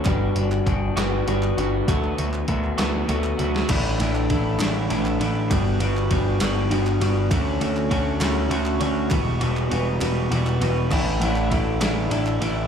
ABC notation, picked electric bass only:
X:1
M:6/8
L:1/8
Q:3/8=66
K:Amix
V:1 name="Picked electric bass" clef=bass
G,,, G,,, G,,, G,,, G,,, G,,, | D,, D,, D,, D,, D,, D,, | A,,, A,,, A,,, A,,, A,,, A,,, | G,,, G,,, G,,, G,,, G,,, G,,, |
D,, D,, D,, D,, D,, D,, | E,,, E,,, E,,, E,,, E,,, E,,, | A,,, A,,, A,,, A,,, A,,, A,,, |]